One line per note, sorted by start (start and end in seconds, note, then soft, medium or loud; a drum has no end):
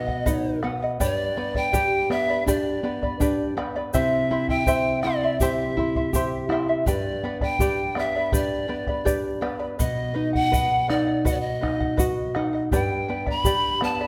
0.00 0.96 B2 medium
0.00 0.27 B3 medium
0.00 0.61 D#5 medium
0.08 0.25 D#5 soft
0.08 0.25 F#5 medium
0.08 bombo low soft
0.26 0.63 D#4 medium
0.26 0.61 B4 medium
0.26 0.62 D#5 medium
0.26 0.63 F#5 medium
0.26 bombo low medium
0.26 shaker medium
0.63 0.99 B3 medium
0.63 0.81 B4 medium
0.63 0.82 D#5 medium
0.63 0.81 F#5 medium
0.63 bombo rim medium
0.82 1.00 D#5 medium
0.82 1.00 F#5 medium
1.00 3.90 G2 medium
1.00 1.37 G4 medium
1.00 1.36 B4 loud
1.00 1.36 D5 medium
1.00 1.58 D5 loud
1.00 1.36 G5 medium
1.00 1.36 B5 loud
1.00 bombo low medium
1.00 shaker loud
1.37 1.73 B3 medium
1.37 1.55 B4 medium
1.37 1.54 D5 medium
1.37 1.55 G5 medium
1.37 1.53 B5 medium
1.55 1.72 B4 soft
1.55 1.72 D5 medium
1.55 2.11 G5 loud
1.55 1.73 B5 medium
1.55 bombo low medium
1.73 2.10 G4 medium
1.73 2.10 B4 medium
1.73 2.09 D5 loud
1.73 2.09 G5 medium
1.73 2.10 B5 medium
1.73 bombo low medium
1.73 shaker medium
2.10 2.46 B3 medium
2.10 2.29 B4 medium
2.10 2.29 D5 medium
2.10 2.45 E5 loud
2.10 2.29 G5 medium
2.10 2.27 B5 medium
2.10 bombo rim medium
2.28 2.47 B4 soft
2.28 2.47 D5 medium
2.28 2.47 B5 medium
2.46 2.82 D4 medium
2.46 2.84 G4 medium
2.46 2.83 B4 medium
2.46 2.83 D5 medium
2.46 3.54 D5 medium
2.46 2.82 G5 medium
2.46 2.84 B5 loud
2.46 bombo low medium
2.46 shaker loud
2.83 3.19 B3 medium
2.83 3.02 B4 medium
2.83 3.02 D5 medium
2.83 3.02 G5 medium
2.83 3.01 B5 medium
3.02 3.20 B4 soft
3.02 3.20 D5 soft
3.02 3.20 B5 medium
3.02 bombo low medium
3.20 3.56 D4 medium
3.20 3.57 G4 medium
3.20 3.56 B4 loud
3.20 3.57 D5 medium
3.20 3.56 G5 medium
3.20 3.57 B5 loud
3.20 bombo low medium
3.20 shaker medium
3.57 3.93 B3 medium
3.57 3.75 B4 medium
3.57 3.75 D5 medium
3.57 3.75 G5 medium
3.57 3.74 B5 medium
3.57 bombo rim medium
3.76 3.94 B4 soft
3.76 3.94 D5 medium
3.76 3.94 B5 medium
3.94 6.83 C3 medium
3.94 4.30 E4 medium
3.94 4.30 C5 medium
3.94 4.51 E5 loud
3.94 4.30 E5 medium
3.94 4.30 G5 medium
3.94 4.31 C6 medium
3.94 bombo low medium
3.94 shaker loud
4.31 4.66 E4 medium
4.31 4.49 E4 medium
4.31 4.49 E5 medium
4.31 4.49 G5 medium
4.31 4.48 C6 medium
4.48 4.67 E4 soft
4.48 4.67 E5 medium
4.48 5.02 G5 loud
4.48 4.67 C6 medium
4.48 bombo low medium
4.66 5.04 E4 medium
4.66 5.04 C5 medium
4.66 5.03 C5 medium
4.66 5.04 E5 loud
4.66 5.03 G5 medium
4.66 5.04 C6 medium
4.66 bombo low medium
4.66 shaker medium
5.02 5.39 E4 medium
5.02 5.23 E4 medium
5.02 5.41 D5 loud
5.02 5.23 E5 medium
5.02 5.22 G5 medium
5.02 5.22 C6 medium
5.02 bombo rim medium
5.24 5.41 E4 soft
5.24 5.41 E5 medium
5.24 5.41 C6 medium
5.40 5.76 E4 medium
5.40 5.76 G4 medium
5.40 5.78 C5 medium
5.40 6.50 E5 medium
5.40 5.78 E5 medium
5.40 5.76 G5 medium
5.40 5.78 C6 loud
5.40 bombo low medium
5.40 shaker loud
5.77 6.13 E4 medium
5.77 5.96 E4 medium
5.77 5.96 E5 medium
5.77 5.96 G5 medium
5.77 5.95 C6 medium
5.77 bombo low medium
5.95 6.14 E4 soft
5.95 6.14 E5 soft
5.95 6.14 C6 medium
5.95 bombo low medium
6.13 6.50 E4 medium
6.13 6.49 G4 medium
6.13 6.51 C5 medium
6.13 6.51 E5 medium
6.13 6.50 G5 medium
6.13 6.51 C6 loud
6.13 bombo low medium
6.13 shaker loud
6.49 6.85 E4 medium
6.49 6.68 E4 medium
6.49 6.68 E5 medium
6.49 6.69 G5 medium
6.49 6.67 C6 medium
6.49 bombo rim medium
6.68 6.87 E4 soft
6.68 6.87 E5 soft
6.68 6.87 C6 medium
6.86 9.75 G2 medium
6.86 7.23 G4 medium
6.86 7.23 B4 medium
6.86 7.38 D5 medium
6.86 7.24 D5 medium
6.86 7.22 G5 medium
6.86 7.24 B5 medium
6.86 bombo low medium
6.86 shaker loud
7.24 7.59 B3 medium
7.24 7.41 B4 medium
7.24 7.41 D5 medium
7.24 7.42 G5 medium
7.24 7.40 B5 medium
7.41 7.60 B4 soft
7.41 7.60 D5 medium
7.41 8.00 G5 loud
7.41 7.60 B5 medium
7.41 bombo low medium
7.59 7.96 G4 medium
7.59 7.97 G4 medium
7.59 7.95 B4 medium
7.59 7.96 D5 medium
7.59 7.95 G5 medium
7.59 7.96 B5 medium
7.59 bombo low medium
7.59 shaker loud
7.95 8.32 B3 medium
7.95 8.15 B4 medium
7.95 8.14 D5 medium
7.95 8.34 E5 medium
7.95 8.15 G5 medium
7.95 8.14 B5 medium
7.95 bombo rim medium
8.16 8.31 B4 soft
8.16 8.32 D5 soft
8.16 8.32 B5 medium
8.32 8.69 D4 medium
8.32 8.69 G4 medium
8.32 8.68 B4 medium
8.32 8.68 D5 medium
8.32 9.40 D5 medium
8.32 8.67 G5 loud
8.32 8.68 B5 medium
8.32 bombo low medium
8.32 shaker loud
8.68 9.05 B3 medium
8.68 8.88 B4 medium
8.68 8.87 D5 medium
8.68 8.87 G5 medium
8.68 8.86 B5 medium
8.87 9.04 B4 medium
8.87 9.05 D5 soft
8.87 9.05 B5 medium
8.87 bombo low medium
9.05 9.42 D4 medium
9.05 9.42 G4 medium
9.05 9.41 B4 medium
9.05 9.41 D5 medium
9.05 9.40 G5 medium
9.05 9.41 B5 medium
9.05 bombo low medium
9.05 shaker loud
9.41 9.78 B3 medium
9.41 9.59 B4 medium
9.41 9.59 D5 medium
9.41 9.60 G5 medium
9.41 9.58 B5 medium
9.41 bombo rim medium
9.59 9.78 B4 soft
9.59 9.79 D5 medium
9.59 9.79 B5 medium
9.79 12.68 B2 medium
9.79 10.13 B4 medium
9.79 10.14 D#5 medium
9.79 10.31 D#5 medium
9.79 10.14 F#5 medium
9.79 bombo low medium
9.79 shaker loud
10.14 10.51 D#4 medium
10.14 10.33 B4 medium
10.14 10.34 D#5 medium
10.14 10.32 F#5 medium
10.33 10.52 D#5 soft
10.33 10.52 F#5 medium
10.33 10.91 F#5 loud
10.33 bombo low medium
10.52 10.88 B4 medium
10.52 10.87 B4 medium
10.52 10.88 D#5 medium
10.52 10.89 F#5 medium
10.52 bombo low medium
10.52 shaker medium
10.88 11.25 D#4 medium
10.88 11.07 B4 medium
10.88 11.26 D5 medium
10.88 11.07 D#5 medium
10.88 11.05 F#5 medium
10.88 bombo rim medium
11.07 11.25 D#5 soft
11.07 11.25 F#5 medium
11.25 11.61 F#4 medium
11.25 11.60 B4 medium
11.25 11.61 D#5 medium
11.25 11.34 D#5 medium
11.25 11.61 F#5 loud
11.25 bombo low medium
11.25 shaker medium
11.33 11.42 D5 medium
11.40 12.36 D#5 medium
11.61 11.98 D#4 medium
11.61 11.80 B4 medium
11.61 11.80 D#5 medium
11.61 11.79 F#5 medium
11.61 bombo rim medium
11.61 bombo low medium
11.80 11.97 D#5 soft
11.80 11.97 F#5 medium
11.80 bombo low medium
11.97 12.35 F#4 medium
11.97 12.34 B4 medium
11.97 12.34 D#5 loud
11.97 12.35 F#5 medium
11.97 bombo low medium
11.97 shaker medium
12.35 12.71 D#4 medium
12.35 12.54 B4 medium
12.35 12.53 D#5 medium
12.35 12.52 F#5 medium
12.35 bombo rim medium
12.53 12.72 D#5 medium
12.53 12.71 F#5 medium
12.72 14.07 G2 medium
12.72 13.09 G4 medium
12.72 13.08 B4 medium
12.72 13.08 D5 medium
12.72 13.07 G5 medium
12.72 13.31 G5 loud
12.72 13.08 B5 loud
12.72 bombo low medium
12.72 shaker medium
13.08 13.45 B3 medium
13.08 13.27 B4 medium
13.08 13.26 D5 medium
13.08 13.27 G5 medium
13.08 13.25 B5 medium
13.26 13.45 B4 soft
13.26 13.45 D5 soft
13.26 13.45 B5 medium
13.26 13.85 B5 loud
13.26 bombo low medium
13.44 13.80 G4 medium
13.44 13.82 G4 medium
13.44 13.82 B4 medium
13.44 13.82 D5 medium
13.44 13.81 G5 medium
13.44 13.82 B5 medium
13.44 bombo low medium
13.44 shaker medium
13.81 14.07 B3 medium
13.81 14.01 B4 medium
13.81 13.99 D5 medium
13.81 14.00 G5 medium
13.81 14.07 A5 loud
13.81 13.99 B5 medium
13.81 bombo rim medium
14.01 14.07 B4 soft
14.01 14.07 D5 medium
14.01 14.07 B5 medium